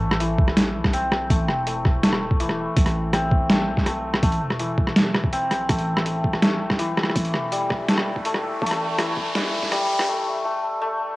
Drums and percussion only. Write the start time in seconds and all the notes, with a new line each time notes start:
0.11 cross-stick
0.20 closed hi-hat
0.39 kick
0.48 cross-stick
0.57 snare, closed hi-hat
0.85 kick, cross-stick, snare
0.94 closed hi-hat
1.12 cross-stick
1.30 kick, closed hi-hat
1.48 cross-stick
1.67 closed hi-hat
1.85 kick, cross-stick
2.03 snare, closed hi-hat
2.13 cross-stick
2.31 kick
2.40 closed hi-hat
2.49 cross-stick
2.76 kick, closed hi-hat
2.86 cross-stick, closed hi-hat
3.13 cross-stick, closed hi-hat
3.31 kick
3.50 cross-stick, snare, closed hi-hat
3.77 kick, snare
3.86 cross-stick, closed hi-hat
4.14 cross-stick
4.23 kick, closed hi-hat
4.32 closed hi-hat
4.50 cross-stick
4.59 closed hi-hat
4.78 kick
4.87 cross-stick
4.96 snare, closed hi-hat
5.14 cross-stick
5.24 kick
5.33 closed hi-hat
5.51 cross-stick, closed hi-hat
5.69 kick, cross-stick, closed hi-hat
5.79 closed hi-hat
5.97 cross-stick
6.06 closed hi-hat
6.24 kick
6.33 cross-stick
6.42 snare, closed hi-hat
6.70 kick, cross-stick, snare
6.79 closed hi-hat
6.97 cross-stick
7.03 cross-stick
7.10 cross-stick
7.16 kick, closed hi-hat
7.25 closed hi-hat
7.34 cross-stick
7.52 closed hi-hat
7.70 kick, cross-stick
7.89 snare, closed hi-hat
7.98 cross-stick
8.16 kick
8.25 closed hi-hat
8.34 cross-stick
8.62 kick
8.66 closed hi-hat
8.71 cross-stick, closed hi-hat
8.98 cross-stick, closed hi-hat
9.17 kick
9.35 cross-stick, snare, closed hi-hat
9.63 kick, snare
9.72 cross-stick, closed hi-hat
9.99 cross-stick